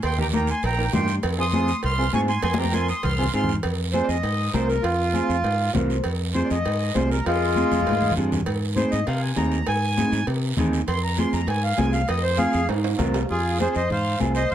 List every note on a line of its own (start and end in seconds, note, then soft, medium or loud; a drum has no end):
0.03 0.51 D#2 medium
0.03 0.18 G5 medium
0.03 0.18 C6 loud
0.03 cowbell loud
0.03 long guiro medium
0.18 0.23 A#3 medium
0.18 0.23 D#4 medium
0.18 0.23 G4 medium
0.18 0.27 G5 medium
0.18 0.27 A#5 medium
0.18 low conga medium
0.33 0.49 A#3 medium
0.33 0.49 D#4 medium
0.33 0.49 A#4 medium
0.33 0.48 G5 medium
0.33 0.48 A#5 medium
0.33 high conga medium
0.33 short guiro medium
0.47 0.63 G#5 medium
0.47 0.63 C6 medium
0.47 short guiro medium
0.63 0.87 A#1 medium
0.63 0.92 G5 medium
0.63 0.92 A#5 medium
0.63 cowbell medium
0.63 high conga soft
0.63 long guiro medium
0.78 0.83 A#3 medium
0.78 0.84 D#4 medium
0.78 0.83 A#4 medium
0.93 1.18 G2 medium
0.93 1.09 A#3 medium
0.93 1.09 D#4 medium
0.93 1.09 F4 medium
0.93 1.15 G5 medium
0.93 1.15 C6 loud
0.93 high conga medium
0.93 low conga medium
0.93 low timbale medium
0.93 short guiro medium
1.08 short guiro medium
1.23 1.72 F2 medium
1.23 cowbell loud
1.23 high conga soft
1.23 long guiro medium
1.37 1.43 C4 medium
1.37 1.43 F4 medium
1.37 1.44 G#4 medium
1.37 1.81 C6 medium
1.37 1.81 D#6 loud
1.53 1.69 C4 medium
1.53 1.69 F4 medium
1.53 1.69 G#4 medium
1.53 high conga medium
1.53 short guiro medium
1.68 short guiro medium
1.83 2.08 C2 medium
1.83 2.12 C6 medium
1.83 2.12 F6 medium
1.83 cowbell medium
1.83 long guiro medium
1.98 2.03 C4 medium
1.98 2.04 F4 medium
1.98 2.04 G#4 medium
2.13 2.37 G#2 medium
2.13 2.29 C4 medium
2.13 2.29 F4 medium
2.13 2.29 G#4 medium
2.13 2.20 G#5 medium
2.13 2.21 C#6 medium
2.13 high conga medium
2.13 short guiro medium
2.28 2.42 G#5 medium
2.28 2.42 C6 medium
2.28 short guiro medium
2.42 2.91 F2 loud
2.42 2.57 G#5 medium
2.42 2.57 C6 medium
2.42 cowbell loud
2.42 high conga medium
2.42 long guiro medium
2.54 2.63 C4 medium
2.54 2.63 F4 medium
2.54 high conga loud
2.58 2.64 G4 medium
2.58 2.73 G5 medium
2.58 2.73 A#5 medium
2.64 high conga medium
2.72 2.88 C4 medium
2.72 2.88 F4 medium
2.72 2.89 A#4 medium
2.72 2.88 G#5 medium
2.72 2.88 C6 medium
2.72 high conga medium
2.72 short guiro medium
2.88 3.02 C6 medium
2.88 3.04 D#6 medium
2.88 short guiro medium
3.03 3.28 C2 medium
3.03 3.32 C6 medium
3.03 3.32 F6 medium
3.03 cowbell medium
3.03 low conga medium
3.03 long guiro medium
3.18 3.24 C4 medium
3.18 3.24 F4 medium
3.18 3.24 G#4 medium
3.24 low conga medium
3.33 3.58 G#2 medium
3.33 3.49 C4 medium
3.33 3.49 F4 medium
3.33 3.50 G#4 medium
3.33 3.55 C6 medium
3.33 3.55 F6 medium
3.33 short guiro medium
3.43 low conga medium
3.49 short guiro medium
3.53 low conga medium
3.63 4.00 F2 medium
3.63 cowbell loud
3.63 long guiro medium
3.93 4.15 C4 medium
3.93 4.15 F4 medium
3.93 4.15 G#4 medium
3.93 4.08 C5 medium
3.93 high conga medium
3.93 short guiro medium
4.03 4.06 D5 medium
4.08 4.21 F2 medium
4.08 4.52 D#5 medium
4.08 short guiro medium
4.23 4.48 G#2 loud
4.23 cowbell medium
4.23 high conga soft
4.23 long guiro medium
4.53 4.78 C2 loud
4.53 4.75 C4 medium
4.53 4.75 F4 medium
4.53 4.75 A#4 medium
4.53 4.68 C5 medium
4.53 high conga medium
4.53 low timbale medium
4.53 short guiro medium
4.68 4.83 A#4 medium
4.68 short guiro medium
4.83 5.20 F2 medium
4.83 5.71 F4 loud
4.83 cowbell medium
4.83 long guiro medium
5.13 5.35 C4 medium
5.13 5.35 F4 medium
5.13 5.35 G#4 medium
5.13 high conga medium
5.13 short guiro medium
5.29 5.41 F2 medium
5.29 short guiro medium
5.44 5.68 G#2 loud
5.44 cowbell medium
5.44 high conga soft
5.44 long guiro medium
5.74 5.99 C2 loud
5.74 5.96 C4 medium
5.74 5.96 F4 medium
5.74 5.96 A#4 medium
5.74 6.03 C5 medium
5.74 high conga medium
5.74 low conga medium
5.74 low timbale medium
5.74 short guiro medium
5.90 short guiro medium
6.04 6.41 F2 medium
6.04 cowbell medium
6.04 long guiro medium
6.34 6.56 C4 medium
6.34 6.56 F4 medium
6.34 6.56 G#4 medium
6.34 6.49 C5 medium
6.34 high conga medium
6.34 short guiro medium
6.45 6.48 D5 medium
6.50 6.62 F2 medium
6.50 6.94 D#5 medium
6.50 short guiro medium
6.65 6.90 G#2 loud
6.65 cowbell medium
6.65 high conga soft
6.65 long guiro medium
6.95 7.20 C2 loud
6.95 7.16 C4 medium
6.95 7.16 F4 medium
6.95 7.17 G#4 medium
6.95 7.10 C5 medium
6.95 high conga medium
6.95 low timbale medium
6.95 short guiro medium
7.11 7.25 A#4 medium
7.11 short guiro medium
7.26 7.62 F2 medium
7.26 8.12 G#3 medium
7.26 8.14 F4 loud
7.26 cowbell medium
7.26 long guiro medium
7.56 7.77 C4 medium
7.56 7.78 F4 medium
7.56 7.78 G#4 medium
7.56 high conga medium
7.56 short guiro medium
7.71 7.83 F2 medium
7.71 high conga medium
7.71 short guiro medium
7.81 high conga medium
7.87 8.11 G#2 loud
7.87 cowbell medium
7.87 long guiro medium
7.91 high conga medium
8.01 low conga medium
8.11 low conga loud
8.16 8.41 G2 loud
8.16 8.37 C4 medium
8.16 8.37 F4 medium
8.16 8.38 G#4 medium
8.16 short guiro medium
8.32 low conga loud
8.32 short guiro medium
8.41 low conga medium
8.46 8.83 G#2 medium
8.46 cowbell loud
8.46 high conga soft
8.46 long guiro medium
8.76 8.97 C4 medium
8.76 8.97 D#4 medium
8.76 8.98 G#4 medium
8.76 8.91 C5 medium
8.76 high conga medium
8.76 short guiro medium
8.91 9.04 G#2 medium
8.91 9.06 D#5 medium
8.91 short guiro medium
9.06 9.31 C3 loud
9.06 9.21 F5 medium
9.06 cowbell medium
9.06 high conga soft
9.06 long guiro medium
9.21 9.36 G#5 medium
9.36 9.61 D#2 loud
9.36 9.58 C4 medium
9.36 9.58 D#4 medium
9.36 9.58 G#4 medium
9.36 9.66 A#5 medium
9.36 high conga medium
9.36 low timbale medium
9.36 short guiro medium
9.52 short guiro medium
9.67 10.04 G#2 medium
9.67 10.26 G#5 loud
9.67 cowbell loud
9.67 high conga soft
9.67 long guiro medium
9.97 10.18 C4 medium
9.97 10.18 D#4 medium
9.97 10.19 G#4 medium
9.97 high conga medium
9.97 short guiro medium
10.12 10.24 G#2 medium
10.12 short guiro medium
10.27 10.51 C3 loud
10.27 cowbell medium
10.27 high conga soft
10.27 long guiro medium
10.57 10.82 D#2 loud
10.57 10.79 C4 medium
10.57 10.79 D#4 medium
10.57 10.79 G#4 medium
10.57 high conga medium
10.57 low conga loud
10.57 short guiro medium
10.73 short guiro medium
10.87 11.24 F2 medium
10.87 11.02 C6 loud
10.87 cowbell medium
10.87 high conga soft
10.87 long guiro medium
11.03 11.18 A#5 medium
11.18 11.39 C4 medium
11.18 11.39 F4 medium
11.18 11.39 G#4 medium
11.18 11.33 C6 loud
11.18 high conga medium
11.18 short guiro medium
11.33 11.45 F2 medium
11.33 11.48 A#5 medium
11.33 short guiro medium
11.47 11.72 G#2 loud
11.47 11.63 G#5 medium
11.47 cowbell medium
11.47 long guiro medium
11.63 11.78 F5 loud
11.78 12.03 C2 loud
11.78 11.99 C4 medium
11.78 12.00 F4 medium
11.78 12.00 G#4 medium
11.78 11.93 G#5 medium
11.78 high conga loud
11.78 low timbale medium
11.78 short guiro medium
11.93 12.08 F5 medium
11.93 short guiro medium
12.08 12.45 F2 medium
12.08 12.23 D#5 medium
12.08 cowbell loud
12.08 high conga soft
12.08 long guiro medium
12.23 12.38 C5 medium
12.38 12.60 C4 medium
12.38 12.60 F4 medium
12.38 12.66 G#4 medium
12.38 12.60 G#4 medium
12.38 12.68 F5 loud
12.38 high conga medium
12.38 short guiro medium
12.53 12.66 F2 medium
12.53 short guiro medium
12.69 12.93 G#2 loud
12.69 cowbell medium
12.69 high conga soft
12.69 high timbale medium
12.69 long guiro medium
12.84 high timbale loud
12.98 13.23 C2 loud
12.98 13.20 C4 medium
12.98 13.20 F4 medium
12.98 13.20 A#4 medium
12.98 high conga loud
12.98 low conga medium
12.98 low timbale loud
12.98 short guiro medium
13.14 low timbale medium
13.14 short guiro medium
13.29 13.66 F2 medium
13.29 13.58 F4 medium
13.29 13.58 G#4 medium
13.29 high conga soft
13.29 long guiro medium
13.58 13.80 C4 medium
13.58 13.80 F4 medium
13.58 13.80 G#4 medium
13.58 13.74 G#4 medium
13.58 13.74 C5 medium
13.58 high conga medium
13.58 short guiro medium
13.75 13.87 F2 medium
13.75 13.89 C5 medium
13.75 13.89 D#5 medium
13.75 short guiro medium
13.90 14.14 G#2 medium
13.90 14.19 C5 medium
13.90 14.19 F5 loud
13.90 high conga soft
13.90 low conga medium
13.90 long guiro medium
14.19 14.44 C2 loud
14.19 14.41 C4 medium
14.19 14.41 F4 medium
14.19 14.41 G#4 medium
14.19 high conga medium
14.19 short guiro medium
14.35 14.49 C5 medium
14.35 14.50 D#5 loud
14.35 short guiro medium
14.50 14.55 F2 medium
14.50 14.55 C5 medium
14.50 14.55 F5 loud
14.50 high conga soft
14.50 long guiro medium